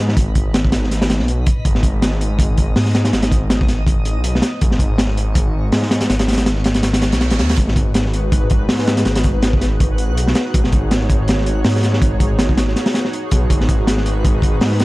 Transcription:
Already playing: G#2 D#4 B4
0.09 snare
0.17 G#1, kick, closed hi-hat
0.35 kick, closed hi-hat
0.54 snare, closed hi-hat
0.65 kick
0.72 snare, closed hi-hat
0.84 snare
0.91 G#1, snare, closed hi-hat
1.02 snare, open hi-hat
1.10 snare, closed hi-hat
1.19 B1, snare
1.28 closed hi-hat
1.46 kick, closed hi-hat
1.65 G#1 D#5, kick, closed hi-hat
1.75 snare
1.83 kick, closed hi-hat
2.02 snare, closed hi-hat
2.12 snare
2.21 closed hi-hat
2.39 kick, closed hi-hat
2.58 kick, closed hi-hat
2.76 G#2, snare, open hi-hat
2.86 snare
2.95 snare, closed hi-hat
3.05 snare, closed hi-hat
3.13 G#1, snare, closed hi-hat
3.22 snare, closed hi-hat
3.32 kick, closed hi-hat
3.50 snare, closed hi-hat
3.61 kick
3.68 snare, closed hi-hat
3.86 G#1, kick, closed hi-hat
4.05 closed hi-hat
4.16 B1
4.24 closed hi-hat
4.35 snare
4.42 snare, closed hi-hat
4.61 G#1 C#5, kick, closed hi-hat
4.71 snare
4.79 kick, closed hi-hat
4.98 snare, closed hi-hat
5.08 snare
5.17 closed hi-hat
5.35 kick, closed hi-hat
5.72 G#2, snare, open hi-hat
5.83 snare
5.91 snare, closed hi-hat
6.01 snare, closed hi-hat
6.09 G#1, snare, closed hi-hat
6.19 snare, closed hi-hat
6.28 snare, closed hi-hat
6.33 snare, closed hi-hat
6.38 snare, closed hi-hat
6.46 snare, closed hi-hat
6.56 snare
6.64 snare, closed hi-hat
6.74 snare, closed hi-hat
6.83 G#1, snare, closed hi-hat, reverse cymbal
6.93 snare, closed hi-hat
7.02 snare, closed hi-hat
7.12 B1, snare, closed hi-hat
7.21 snare, closed hi-hat
7.30 G#1, snare, closed hi-hat
7.39 D#2, snare, closed hi-hat
7.50 snare, closed hi-hat
7.57 G#1 D#4 F#4 G#4 B4 F#5, kick, closed hi-hat
7.68 snare
7.76 kick, closed hi-hat
7.94 snare, closed hi-hat
8.06 snare
8.14 closed hi-hat
8.32 kick, closed hi-hat
8.50 kick, closed hi-hat
8.69 G#2, snare, open hi-hat
8.79 snare
8.87 snare, closed hi-hat
8.97 snare, closed hi-hat
9.05 G#1, snare, closed hi-hat
9.15 snare, closed hi-hat
9.24 kick, closed hi-hat
9.42 snare, closed hi-hat
9.53 kick
9.61 snare, closed hi-hat
9.80 G#1, kick, closed hi-hat
9.98 closed hi-hat
10.09 B1
10.17 closed hi-hat
10.27 snare
10.35 snare, closed hi-hat
10.54 G#1 C#5, kick, closed hi-hat
10.64 snare
10.72 kick, closed hi-hat
10.91 snare, closed hi-hat
11.01 snare
11.10 kick, closed hi-hat
11.28 snare, closed hi-hat
11.38 snare
11.46 closed hi-hat
11.64 G#2, snare, open hi-hat
11.76 snare
11.83 snare, closed hi-hat
11.93 snare
12.02 G#1, kick, closed hi-hat
12.20 kick, closed hi-hat
12.39 snare, closed hi-hat
12.49 kick
12.57 snare, closed hi-hat
12.68 snare
12.76 snare, closed hi-hat
12.86 snare, open hi-hat
12.94 snare, closed hi-hat
13.05 snare
13.13 closed hi-hat
13.31 B1, kick, closed hi-hat
13.50 G#1 B4 B5, kick, closed hi-hat
13.61 snare
13.69 kick, closed hi-hat
13.87 snare, closed hi-hat
13.97 snare
14.06 closed hi-hat
14.25 kick, closed hi-hat
14.42 kick, closed hi-hat
14.61 G#2, snare, open hi-hat
14.72 snare
14.80 snare, closed hi-hat

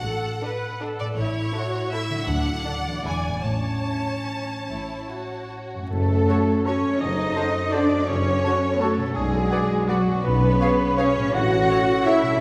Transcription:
Already playing: A2 A3 D4 A4 F#5
0.04 A1 A2 A4
0.42 D4 A4 B4
0.80 D4 A4
0.99 A2 D5
1.04 A3
1.09 E4
1.13 A1 A2 E4 A4 C#5
1.52 E4 F#4 A4
1.91 E4 A4 E5
2.09 D3
2.14 F#3
2.18 D4
2.22 A4
2.27 D2 D4 F#5
2.65 D4 A4 D5
2.86 E3
2.91 B3
2.95 D4
3.00 E4
3.04 E1 E2 D4 E4 G#5
3.26 A2
3.30 A3
3.35 C#4
3.39 E4 A5
3.44 A1 A2 C#5
3.85 C#4
4.68 A1 A2 E4
5.10 F#4
5.74 F#2
5.78 A3
5.83 C#4
5.87 A3 F#4 A4
5.92 F#1 F#2 A4 C#5
6.28 F#4 A4 C#5 A5
6.66 C#4 F#4 A4 C#5 A5
6.84 F#2
6.88 A3
6.92 C4
6.97 D#4 F#4 D#5
7.01 F#1 F#2 C5 D#5
7.35 F#4 A4 C5 A5
7.72 D4 F#4 A4 C5 D5 A5
7.89 F#2
7.94 A3
7.98 C#4
8.03 C#4 F#4 C#5
8.07 F#1 F#2 A4 C#5
8.44 F#4 A4 C#5 A5
8.74 B3
8.80 A3 F#4 A4 C#5 A5
8.97 B2
9.02 B3
9.06 D4
9.11 F#4 G#4
9.15 B1 G#3 F#4 G#4 D5
9.50 F#4 B4 D5 F#5
9.87 F#3 F#4 B4 D5 F#5
10.07 B2
10.11 G#3
10.16 C#4
10.20 F4 B4
10.25 B1 B3 G#4 B4 C#5
10.61 G#4 C#5 F5
10.97 C#4 G#4 C#5 F5
11.16 A2
11.20 A3
11.25 C#4
11.29 F#4
11.34 A1 F#4 A4 F#5
11.69 A4 C#5 F#5
12.04 E4 A4 C#5 E5 F#5
12.22 B2
12.27 G3
12.31 D4
12.35 G4

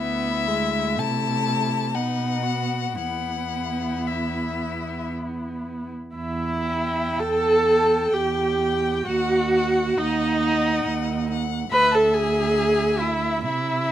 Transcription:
Already playing: D2 B3 E4 E5
0.48 G#3
0.97 C3 A3 E4 A5
1.94 B2 B3 D#4 F#5
2.43 F#4
2.95 E2 B3 E4 F#5
4.07 E5
6.15 E2 E4 E5
6.67 G5
7.19 E2 A4 A5
7.67 G5
8.13 E2 G4 G5
8.61 G5
9.06 D#2 F#4 F#5
9.55 F#5
9.97 D#2 D#4 D#5
10.43 F#5
10.85 D#2
11.31 F#5
11.71 D2 B4 E5 B5
11.91 A4 A5
12.14 G#4 G#5
13.00 E4 E5
13.43 C3 E4 E5

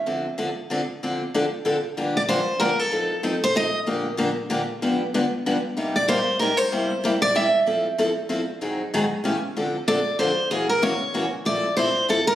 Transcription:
0.06 D3 F3 C4 D4 A4
0.38 D3 F3 C4 D4 A4
0.70 D3 F3 C4 D4 A4
1.03 D3 F3 C4 D4 A4
1.34 D3 F3 C4 D4 A4
1.65 D3 F3 C4 D4 A4
1.97 G2 D3 F3 A#3 D4 G4
2.17 D5
2.29 G2 D3 F3 A#3 D4 G4 C5
2.60 G2 D3 F3 A#3 D4 G4 A#4
2.79 A4
2.92 F3 C4 D#4 A4
3.23 F3 C4 D#4 A4
3.44 C5
3.55 F3 C4 D#4 A4 D#5
3.86 A#2 D3 F3 A#3 D4 G4
4.17 A#2 D3 F3 A#3 D4 G4
4.50 A#2 D3 F3 A#3 D4 G4
4.82 G2 D3 F3 B3 D4 G4
5.14 G2 D3 F3 B3 D4 G4
5.46 G2 D3 F3 B3 D4 G4
5.77 C3 G3 A#3 D#4 G4
5.96 D5
6.08 C3 G3 A#3 D#4 G4 C5
6.39 C3 G3 A#3 D#4 G4 A#4
6.57 C5
6.72 C3 G3 A#3 E4 G4
7.04 C3 G3 A#3 E4 G4
7.22 D5
7.35 C3 G3 A#3 E4 G4 E5
7.66 F3 C4 E4 A4
7.98 F3 C4 E4 A4
8.29 F3 C4 E4 A4
8.61 G#2 D#3 F#3 C4 D#4 G#4
8.94 G#2 D#3 F#3 C4 D#4 G#4
9.24 A2 C#3 E3 A3 C#4 G4
9.57 D3 F3 C4 D4 A4
9.88 D3 F3 C4 D4 A4 D5
10.19 D3 F3 C4 D4 A4 C5
10.51 F#2 C#3 E3 A#3 C#4 F#4 G#4
10.69 A#4
10.82 F#2 C#3 E3 A#3 C#4 F#4 C#5
11.14 F#2 C#3 E3 A#3 C#4 F#4
11.45 F3 C4 E4 A4 D5
11.77 F3 C4 E4 A4 C5
12.08 F3 C4 E4 A4
12.27 A#4

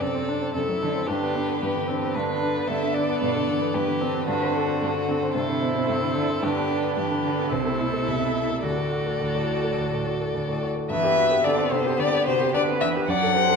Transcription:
Already playing: D5
0.01 F#2 C3 C4 A4
0.15 C4
0.29 D4
0.42 C4
0.54 F#2 C3 E4 A4
0.69 F#3
0.81 D3 D4
0.95 C4
1.06 G2 D3 D4 G4 B4
1.23 B3
1.35 B3 D4
1.49 B3
1.60 G2 E3 B3 G4
1.76 D3
1.87 C4 D4
2.03 B3
2.13 G2 D3 D4 B4
2.29 B3
2.43 D4
2.57 B3
2.67 G2 D3 B3 A4 E5
2.83 D3
2.94 D4 D5
3.09 B3
3.21 G2 B2 D5
3.36 D3
3.48 E3 D4
3.62 B3
3.74 G2 B3 G4 B4
3.87 D3
4.01 C4 D4
4.14 B3
4.27 G2 D3 D4 F#4 B4
4.42 C4
4.55 D4 A4
4.68 C4
4.81 G2 D4 A4
4.95 D3
5.08 C4 D4
5.23 C4
5.34 G2 C3 E4 A4 C5
5.49 D3
5.61 B2 D4
5.75 C4
5.88 G2 C3 A4
6.02 D3
6.15 D3 D4
6.29 C4
6.42 G2 D3 D4 G4 B4
6.57 B3
6.71 D4
6.84 B3
6.96 G2 E3 G4 B4
7.10 D3
7.25 D3 D4
7.39 B3
7.52 C2 C3 E4 A4 C5
7.66 A3
7.80 B2 E4
7.93 A3
8.08 C2 E5
8.21 C3
8.35 E4
8.49 A3
8.63 D2 A2 F#4 A4 D5
8.77 A3
8.92 F#4
9.06 A3
9.21 D2
9.35 A2
9.49 F#4
9.64 A3
9.78 D2
9.93 A2
10.07 F#4
10.21 A3
10.35 D2
10.49 A2
10.63 F#4
10.76 A3
10.90 G2 E3 B3 B4 E5
11.04 G4
11.18 F#4
11.31 G4
11.44 D3 D4 A4 D5
11.58 C4
11.71 C3 D4 C5
11.86 G4
11.99 D3 G4 D5
12.12 G4
12.26 C3 F#4 C5
12.41 G4
12.54 D3 D4 B4 D5
12.68 C4
12.81 E3 D4 E5
12.96 G4
13.08 F#2 F#3 D4 D5 F#5
13.22 A4
13.35 G4 C5
13.49 A4

